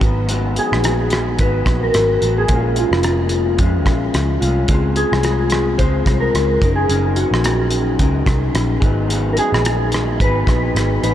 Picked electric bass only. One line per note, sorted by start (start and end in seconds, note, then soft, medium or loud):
0.01 0.57 G#1 medium
0.72 1.36 A#1 medium
1.39 1.61 G#1 medium
1.66 1.88 A#1 medium
1.94 2.16 G#1 medium
2.22 2.44 A1 medium
2.49 2.83 A#1 medium
2.91 3.56 F1 medium
3.59 3.86 F2 medium
3.86 4.08 A#1 medium
4.14 4.36 C#2 medium
4.42 4.64 C2 medium
4.69 5.03 C#2 medium
5.12 5.76 C2 medium
5.79 6.01 C#2 medium
6.06 6.28 C2 medium
6.34 6.57 C#2 medium
6.62 6.84 F#1 medium
6.89 7.24 F#1 medium
7.31 7.96 A#1 medium
7.99 8.22 C#2 medium
8.27 8.49 C2 medium
8.54 8.77 A#1 medium
8.82 9.38 G#1 medium
9.52 10.17 A#1 medium
10.20 10.42 G#1 medium
10.47 10.70 A#1 medium
10.75 10.97 G#1 medium
11.03 11.14 A1 medium